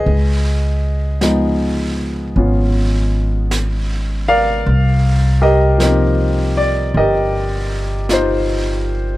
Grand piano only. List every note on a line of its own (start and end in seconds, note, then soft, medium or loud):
0.00 1.94 G#4 medium
0.00 1.94 B4 medium
0.00 1.93 D#5 medium
1.21 4.65 F3 soft
1.21 4.66 G#3 soft
1.21 2.34 B3 soft
1.21 4.66 D#4 soft
2.36 4.65 B3 soft
2.36 4.66 C#4 soft
2.36 4.66 F4 soft
4.28 5.40 A#4 medium
4.28 6.53 D5 medium
4.28 5.38 F5 loud
5.42 6.96 G4 medium
5.42 6.96 A#4 medium
5.42 6.52 D#5 medium
5.78 9.17 F3 soft
5.78 9.17 A#3 soft
5.78 9.17 C4 soft
5.83 8.09 D#4 soft
6.57 6.96 D5 medium
6.97 9.17 G4 medium
6.97 9.17 A#4 medium
6.97 8.07 D#5 medium
8.10 9.17 D#4 medium
8.10 9.17 F4 medium
8.10 9.17 C5 medium